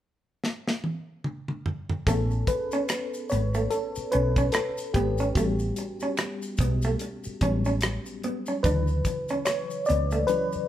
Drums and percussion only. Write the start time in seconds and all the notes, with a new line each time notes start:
0.44 snare
0.68 snare
0.84 high tom
1.24 mid tom
1.48 mid tom
1.66 floor tom
1.90 floor tom
2.07 kick, closed hi-hat, maracas
2.31 maracas
2.47 kick, closed hi-hat, maracas
2.71 cross-stick, closed hi-hat, maracas
2.89 finger snap, cross-stick, closed hi-hat, maracas
3.14 maracas
3.29 closed hi-hat, maracas
3.54 closed hi-hat, maracas
3.71 closed hi-hat, maracas
3.96 maracas
4.12 closed hi-hat
4.36 kick, closed hi-hat, maracas
4.52 finger snap, cross-stick, closed hi-hat, maracas
4.78 maracas
4.94 kick, closed hi-hat
5.18 closed hi-hat, maracas
5.35 kick, closed hi-hat, maracas
5.59 maracas
5.76 closed hi-hat, maracas
6.00 cross-stick, maracas
6.17 finger snap, cross-stick, closed hi-hat, maracas
6.42 maracas
6.57 kick, closed hi-hat, maracas
6.82 closed hi-hat, maracas
6.99 closed hi-hat, maracas
7.24 maracas
7.41 kick, closed hi-hat
7.65 maracas
7.81 finger snap, cross-stick, closed hi-hat, maracas
8.06 maracas
8.23 closed hi-hat
8.46 maracas
8.64 kick, closed hi-hat, maracas
8.87 maracas
9.05 kick, closed hi-hat, maracas
9.28 cross-stick, closed hi-hat, maracas
9.46 finger snap, cross-stick, closed hi-hat, maracas
9.70 maracas
9.85 maracas
9.90 closed hi-hat
10.11 closed hi-hat, maracas
10.28 closed hi-hat, maracas
10.52 maracas